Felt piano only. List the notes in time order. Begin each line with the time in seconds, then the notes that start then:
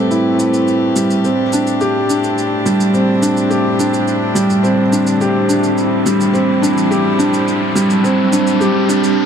Already playing: G3 A3 C4 E4
0.11 E4
0.39 E4
0.96 G3
1.25 C4
1.53 D4
1.81 G4
2.09 D4
2.66 G3
2.94 C4
3.22 D4
3.50 G4
3.79 D4
4.35 G3
4.63 C4
4.92 D4
5.21 G4
5.49 D4
6.06 G3
6.33 C4
6.62 D4
6.91 G4
7.19 D4
7.75 G3
8.04 C4
8.32 D4
8.60 G4
8.89 D4